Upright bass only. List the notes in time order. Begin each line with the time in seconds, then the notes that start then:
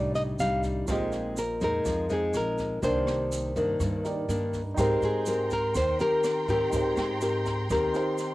Already playing: C2
0.39 C2
0.88 A#1
1.61 F2
1.85 F2
2.34 A#1
2.83 C2
3.56 G2
3.80 G2
4.28 G2
4.77 G#2
5.02 G#2
5.75 D#2
6.48 G#2
6.73 G#2
6.97 G#2
7.70 D#2